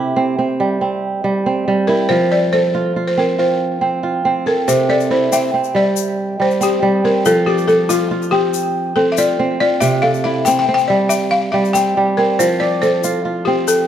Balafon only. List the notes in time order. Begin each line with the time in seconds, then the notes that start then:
1.87 A#4
2.09 C5
2.32 D5
2.53 C5
3.08 C5
3.19 A#4
3.39 C5
4.47 A#4
4.68 C5
4.90 D5
5.11 C5
5.33 E5
5.76 D5
6.42 C5
6.63 G4
7.05 A#4
7.26 A4
7.46 G4
7.68 A4
7.89 F4
8.31 G4
8.96 A4
9.12 E5
9.18 D5
9.60 D5
9.81 E5
10.02 F5
10.24 E5
10.45 G5
10.59 G5
10.74 G5
10.88 D5
11.09 E5
11.31 F5
11.52 E5
11.73 G5
12.17 A#4
12.39 C5
12.60 D5
12.82 C5
13.45 G4
13.68 A4